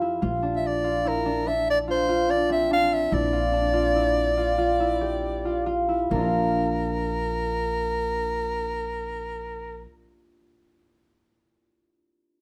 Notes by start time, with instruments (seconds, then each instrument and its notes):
Already playing: upright bass F2, harp C4 G4
0.01 harp E4
0.22 upright bass A#1, harp F4
0.42 harp D4
0.56 soprano saxophone E5
0.67 soprano saxophone D5
0.84 harp F4
1.05 harp E4, soprano saxophone A#4
1.25 harp D4
1.47 harp D4, soprano saxophone E5
1.70 soprano saxophone D5
1.88 harp F4, soprano saxophone C5
2.09 harp F4
2.29 harp D4, soprano saxophone D5
2.49 harp C4, soprano saxophone E5
2.71 harp D4, soprano saxophone F5
2.93 soprano saxophone E5
3.11 upright bass A#1, harp E4, soprano saxophone D5
3.33 harp F4
3.53 harp D4
3.74 harp F4
3.95 harp E4
4.37 harp F4
4.58 harp F4
4.80 harp E4
5.01 harp G4
5.45 harp F4
5.66 harp F4
5.89 harp E4
6.10 upright bass A#1, harp A#3, soprano saxophone A#4
6.15 harp D4 F4
6.22 harp A#4